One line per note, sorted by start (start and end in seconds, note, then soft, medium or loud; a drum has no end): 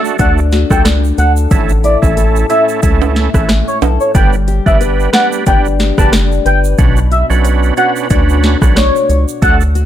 0.00 0.17 A3 medium
0.00 0.17 D4 medium
0.00 0.19 D4 medium
0.00 0.17 F#4 medium
0.00 0.51 F#4 medium
0.00 0.17 A4 medium
0.00 1.18 A4 medium
0.05 shaker medium
0.19 0.65 D2 loud
0.19 0.40 A3 medium
0.19 0.40 D4 medium
0.19 0.84 D4 medium
0.19 0.40 F#4 medium
0.19 0.40 A4 loud
0.19 0.33 F#5 medium
0.19 kick medium
0.19 closed hi-hat medium
0.19 shaker medium
0.38 shaker medium
0.52 1.59 F#4 medium
0.52 snare medium
0.52 closed hi-hat medium
0.52 shaker soft
0.70 1.12 C#2 medium
0.70 0.88 A3 medium
0.70 0.88 D4 medium
0.70 0.88 F#4 medium
0.70 0.88 A4 medium
0.70 0.82 G5 medium
0.70 kick loud
0.70 cross-stick medium
0.70 shaker medium
0.85 1.59 D4 medium
0.85 cross-stick medium
0.85 snare loud
0.85 closed hi-hat medium
0.85 shaker medium
1.04 shaker soft
1.18 1.47 D2 loud
1.18 2.16 A4 medium
1.18 1.32 F#5 medium
1.18 closed hi-hat medium
1.18 shaker medium
1.36 shaker medium
1.51 1.97 A1 loud
1.51 4.15 A2 medium
1.51 1.72 A3 loud
1.51 1.72 C#4 medium
1.51 1.72 E4 medium
1.51 1.72 A4 loud
1.51 kick loud
1.51 closed hi-hat medium
1.51 shaker medium
1.69 shaker medium
1.84 2.49 E4 medium
1.84 1.98 D5 medium
1.84 closed hi-hat medium
1.84 shaker soft
2.02 2.44 A1 loud
2.02 2.46 A3 medium
2.02 2.46 C#4 medium
2.02 2.47 E4 medium
2.02 2.47 A4 medium
2.02 kick medium
2.02 shaker medium
2.17 3.81 A4 medium
2.17 closed hi-hat medium
2.17 shaker medium
2.36 shaker medium
2.50 2.80 A3 medium
2.50 2.81 C#4 medium
2.50 3.15 E4 medium
2.50 2.81 E4 medium
2.50 2.81 A4 medium
2.50 2.64 E5 medium
2.50 closed hi-hat medium
2.50 shaker medium
2.69 shaker medium
2.83 3.28 C#2 loud
2.83 3.30 A3 medium
2.83 3.30 C#4 medium
2.83 3.48 C#4 medium
2.83 3.30 E4 medium
2.83 3.30 A4 loud
2.83 kick medium
2.83 closed hi-hat medium
2.83 shaker medium
3.02 high timbale medium
3.02 shaker medium
3.16 4.22 E4 medium
3.16 snare medium
3.16 closed hi-hat medium
3.16 shaker medium
3.34 3.63 A1 medium
3.34 3.52 A3 medium
3.34 3.52 C#4 medium
3.34 3.52 E4 medium
3.34 3.52 A4 medium
3.34 kick loud
3.34 cross-stick loud
3.34 shaker medium
3.49 4.22 C#4 medium
3.49 cross-stick medium
3.49 snare loud
3.49 closed hi-hat medium
3.49 shaker medium
3.67 3.79 C#5 medium
3.67 shaker soft
3.82 3.98 B1 loud
3.82 4.22 A4 medium
3.82 closed hi-hat medium
3.82 high timbale medium
3.82 shaker medium
4.00 4.11 C#5 medium
4.00 shaker medium
4.15 4.60 G1 loud
4.15 6.79 G3 medium
4.15 4.36 B3 medium
4.15 4.36 D4 medium
4.15 4.36 G4 medium
4.15 4.36 B4 loud
4.15 4.29 G5 loud
4.15 kick loud
4.15 closed hi-hat medium
4.15 shaker medium
4.33 shaker medium
4.48 5.13 G4 medium
4.48 closed hi-hat medium
4.48 shaker medium
4.66 5.08 G1 medium
4.66 5.10 B3 medium
4.66 5.10 D4 medium
4.66 5.10 G4 medium
4.66 5.10 B4 medium
4.66 4.77 E5 medium
4.66 kick medium
4.66 shaker medium
4.81 6.45 B4 medium
4.81 closed hi-hat medium
4.81 shaker medium
5.00 shaker medium
5.13 5.44 B3 medium
5.13 5.44 D4 medium
5.13 5.78 G4 medium
5.13 5.45 G4 medium
5.13 5.45 B4 medium
5.13 5.28 F#5 medium
5.13 cross-stick medium
5.13 snare loud
5.13 closed hi-hat medium
5.13 shaker soft
5.32 shaker medium
5.46 5.92 G1 loud
5.46 5.67 B3 medium
5.46 5.67 D4 medium
5.46 6.12 D4 medium
5.46 5.68 G4 medium
5.46 5.68 B4 loud
5.46 5.61 G5 medium
5.46 kick medium
5.46 closed hi-hat medium
5.46 shaker medium
5.66 shaker medium
5.79 6.86 G4 medium
5.79 snare medium
5.79 closed hi-hat medium
5.79 shaker medium
5.98 6.40 F#1 medium
5.98 6.16 B3 medium
5.98 6.16 D4 medium
5.98 6.16 G4 medium
5.98 6.16 B4 medium
5.98 6.09 A5 medium
5.98 kick loud
5.98 cross-stick loud
5.98 shaker medium
6.12 7.47 D4 medium
6.12 cross-stick medium
6.12 snare loud
6.12 closed hi-hat medium
6.12 shaker medium
6.32 shaker soft
6.45 6.75 G1 medium
6.45 7.44 B4 medium
6.45 6.60 G5 medium
6.45 closed hi-hat medium
6.45 shaker medium
6.64 shaker medium
6.78 7.24 B1 loud
6.78 9.42 B2 medium
6.78 6.99 C#4 medium
6.78 6.99 D4 medium
6.78 6.99 F#4 medium
6.78 7.00 B4 loud
6.78 kick loud
6.78 closed hi-hat medium
6.78 shaker medium
6.97 shaker medium
7.11 7.77 F#4 medium
7.11 7.26 E5 medium
7.11 closed hi-hat medium
7.11 shaker soft
7.30 7.72 B1 loud
7.30 7.74 C#4 medium
7.30 7.74 D4 medium
7.30 7.74 F#4 medium
7.30 7.74 B4 medium
7.30 shaker medium
7.44 9.08 C#5 medium
7.44 closed hi-hat medium
7.44 shaker medium
7.63 shaker medium
7.77 8.08 C#4 medium
7.77 8.08 D4 medium
7.77 8.43 F#4 medium
7.77 8.08 F#4 medium
7.77 8.08 B4 medium
7.77 7.92 F#5 medium
7.77 closed hi-hat medium
7.77 shaker soft
7.96 shaker medium
8.10 8.56 D2 loud
8.10 8.57 C#4 medium
8.10 8.57 D4 medium
8.10 8.76 D4 medium
8.10 8.57 F#4 medium
8.10 8.58 B4 loud
8.10 kick medium
8.10 closed hi-hat medium
8.10 shaker medium
8.29 shaker medium
8.43 9.75 F#4 medium
8.43 snare medium
8.43 closed hi-hat medium
8.43 shaker soft
8.62 8.91 B1 medium
8.62 8.79 C#4 medium
8.62 8.79 D4 medium
8.62 8.79 F#4 medium
8.62 8.79 B4 medium
8.62 kick loud
8.62 cross-stick loud
8.62 shaker medium
8.76 9.86 D4 medium
8.76 9.25 C#5 medium
8.76 cross-stick medium
8.76 snare loud
8.76 closed hi-hat medium
8.76 shaker medium
8.96 shaker medium
9.09 9.26 C#2 medium
9.09 9.50 C#5 medium
9.09 closed hi-hat medium
9.09 shaker medium
9.28 shaker medium
9.42 9.86 D2 loud
9.42 9.63 A3 loud
9.42 9.63 D4 medium
9.42 9.63 F#4 medium
9.42 9.63 A4 loud
9.42 9.56 F#5 loud
9.42 kick loud
9.42 closed hi-hat medium
9.42 shaker medium
9.61 shaker medium
9.75 9.86 F#4 medium
9.75 closed hi-hat medium
9.75 shaker medium